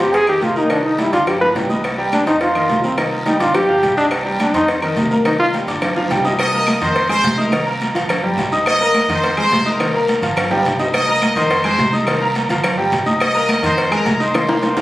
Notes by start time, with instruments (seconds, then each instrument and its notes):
0.00 upright bass F2, grand piano C4 C5 C6, trombone G4, cowbell
0.13 trombone G#4, cowbell, high conga, low agogo, long guiro
0.27 grand piano D#3 D#4 D#5, trombone G4, high conga, low agogo, claves
0.42 upright bass C2, trombone F4, cowbell, high conga, low timbale, short guiro
0.56 grand piano A#3 A#4 A#5, trombone D#4, high conga, short guiro
0.70 grand piano D#3 D#4 D#5, trombone D4, cowbell, high conga, low agogo, long guiro, claves
0.84 trombone D#4, high conga
0.98 grand piano G3 G4 G5, trombone E4, cowbell, high conga, low timbale, low agogo, short guiro
1.12 upright bass G1, grand piano D4 D5 D6, trombone F4, cowbell, short guiro
1.27 trombone G4, cowbell, high conga, low conga, low agogo, long guiro, claves
1.41 grand piano F3 F4 F5, trombone B4, high bongo, high conga
1.55 upright bass C2, grand piano G3 G4 G5, cowbell, high bongo, high conga, low timbale, low agogo, short guiro
1.69 grand piano D#4 D#5 D#6, low bongo, high conga, low agogo, short guiro
1.84 cowbell, high conga, low agogo, long guiro, claves
1.98 grand piano G3 G4 G5, high conga
2.12 trombone D4, cowbell, high conga, low timbale, low agogo, short guiro, claves
2.26 upright bass F2, grand piano C4 C5 C6, trombone D#4, cowbell, high conga, short guiro
2.41 trombone F4, cowbell, high conga, low agogo, long guiro
2.55 grand piano D#3 D#4 D#5, high conga, low agogo, claves
2.69 upright bass C2, cowbell, high conga, low timbale, short guiro
2.83 grand piano A#3 A#4 A#5, trombone C4, short guiro
2.97 grand piano D#3 D#4 D#5, cowbell, high conga, low agogo, long guiro, claves
3.12 high conga
3.26 grand piano G3 G4 G5, trombone D#4, cowbell, high conga, low timbale, low agogo, short guiro
3.40 upright bass G1, grand piano D4 D5 D6, trombone F4, cowbell, high conga, short guiro
3.54 trombone G4, cowbell, high conga, low conga, low agogo, long guiro, claves
3.68 grand piano F3 F4 F5, high conga, low conga
3.83 upright bass C2, grand piano G3 G4 G5, cowbell, high conga, low timbale, low agogo, short guiro
3.97 trombone D4, grand piano D#4 D#5 D#6, low agogo, short guiro
4.11 cowbell, high conga, low agogo, long guiro, claves
4.25 grand piano G3 G4 G5, high conga
4.39 trombone D4, cowbell, high conga, low timbale, low agogo, short guiro, claves
4.54 upright bass F2, grand piano C4 C5 C6, trombone D#4, cowbell, high conga, short guiro
4.68 cowbell, high conga, low agogo, long guiro
4.82 grand piano D#3 D#4 D#5, high conga, low agogo, claves
4.96 upright bass C2, cowbell, high conga, low timbale, short guiro
5.11 grand piano A#3 A#4 A#5, high conga, short guiro
5.25 grand piano D#3 D#4 D#5, trombone D#4, cowbell, high conga, low agogo, long guiro, claves
5.39 trombone F4, high conga
5.54 grand piano G3 G4 G5, cowbell, high conga, low timbale, low agogo, short guiro
5.67 upright bass G1, grand piano D4 D5 D6, cowbell, high conga, short guiro
5.82 cowbell, high conga, low conga, high timbale, low agogo, long guiro, claves
5.96 grand piano F3 F4 F5, high conga, low conga, high timbale
6.10 upright bass C2, grand piano G3 G4 G5, cowbell, high conga, low timbale, low agogo, short guiro
6.24 grand piano D#4 D#5 D#6, low timbale, low agogo, short guiro
6.39 trumpet section D#5 D#6, cowbell, high conga, low agogo, long guiro, claves
6.53 grand piano A#3 A#4 A#5, high conga
6.67 cowbell, high conga, low timbale, low agogo, short guiro, claves
6.81 upright bass F2, grand piano D#3 D#4 D#5, trumpet section C5 C6, cowbell, short guiro
6.96 cowbell, high conga, low agogo, long guiro
7.09 grand piano G#3 G#4 G#5, trumpet section C5 C6, high conga, low agogo, claves
7.23 upright bass C2, cowbell, high conga, low timbale, short guiro
7.37 grand piano D#4 D#5 D#6, trumpet section A#4 A#5, high conga, short guiro
7.52 grand piano D#3 D#4 D#5, cowbell, high conga, low agogo, long guiro, claves
7.66 grand piano A#3 A#4 A#5, high conga
7.81 cowbell, high conga, low timbale, low agogo, short guiro
7.95 upright bass G1, grand piano F3 F4 F5, cowbell, high conga, short guiro
8.09 cowbell, high conga, low conga, low agogo, long guiro, claves
8.23 grand piano G3 G4 G5, high conga, low conga
8.38 upright bass C2, cowbell, low timbale, low agogo, short guiro
8.52 grand piano D#4 D#5 D#6, low agogo, short guiro
8.66 trumpet section D#5 D#6, cowbell, high conga, low agogo, long guiro, claves
8.80 grand piano A#3 A#4 A#5, high conga
8.94 cowbell, high conga, low timbale, low agogo, short guiro, claves
9.08 upright bass F2, grand piano D#3 D#4 D#5, trumpet section C5 C6, cowbell, high conga, short guiro
9.23 cowbell, high conga, low agogo, long guiro
9.37 grand piano G#3 G#4 G#5, trumpet section C5 C6, high conga, low agogo, claves
9.51 upright bass C2, cowbell, high conga, low timbale, short guiro
9.66 grand piano D#4 D#5 D#6, trumpet section A#4 A#5, high conga, short guiro
9.80 grand piano D#3 D#4 D#5, cowbell, high conga, low agogo, long guiro, claves
9.94 grand piano A#3 A#4 A#5, high conga
10.08 cowbell, high conga, low timbale, low agogo, short guiro
10.22 upright bass G1, grand piano F3 F4 F5, cowbell, high conga, short guiro
10.36 cowbell, high conga, low conga, low agogo, long guiro, claves
10.50 grand piano G3 G4 G5, high conga, low conga, high timbale
10.65 upright bass C2, cowbell, high conga, high timbale, low agogo, short guiro
10.79 grand piano D#4 D#5 D#6, low timbale, low agogo, short guiro
10.93 trumpet section D#5 D#6, cowbell, high conga, low agogo, long guiro, claves
11.08 grand piano A#3 A#4 A#5, high conga
11.22 cowbell, high conga, low timbale, low agogo, short guiro, claves
11.35 upright bass F2, grand piano D#3 D#4 D#5, trumpet section C5 C6, cowbell, short guiro
11.50 cowbell, high conga, low agogo, long guiro
11.64 grand piano G#3 G#4 G#5, trumpet section C5 C6, high conga, low agogo, claves
11.79 upright bass C2, cowbell, high conga, low timbale, short guiro
11.92 grand piano D#4 D#5 D#6, trumpet section A#4 A#5, high conga, short guiro
12.07 grand piano D#3 D#4 D#5, cowbell, high conga, low agogo, long guiro, claves
12.21 grand piano A#3 A#4 A#5, high conga
12.35 cowbell, high conga, low timbale, low agogo, short guiro
12.49 upright bass G1, grand piano F3 F4 F5, cowbell, high conga, short guiro
12.64 cowbell, high conga, low conga, low agogo, long guiro, claves
12.77 grand piano G3 G4 G5, high conga
12.92 upright bass C2, cowbell, high conga, low timbale, low agogo, short guiro
13.06 grand piano D#4 D#5 D#6, high conga, low agogo, short guiro
13.20 trumpet section D#5 D#6, cowbell, high conga, low agogo, long guiro, claves
13.34 grand piano A#3 A#4 A#5, high conga
13.49 cowbell, high conga, low timbale, low agogo, short guiro, claves
13.62 upright bass F2, grand piano D#3 D#4 D#5, trumpet section C5 C6, cowbell, high conga, short guiro
13.77 cowbell, high conga, low agogo, long guiro
13.91 grand piano G#3 G#4 G#5, trumpet section A#4 A#5, high conga, low agogo, claves
14.06 upright bass C2, cowbell, high conga, low timbale, short guiro
14.20 grand piano D#4 D#5 D#6, trumpet section C5 C6, short guiro
14.34 grand piano D#3 D#4 D#5, cowbell, high bongo, high conga, high timbale, low agogo, long guiro, claves
14.48 grand piano A#3 A#4 A#5, high bongo, high conga, high timbale
14.62 cowbell, high bongo, high conga, high timbale, low agogo, short guiro
14.77 upright bass G1, grand piano F3 F4 F5, cowbell, low bongo, high conga, high timbale, short guiro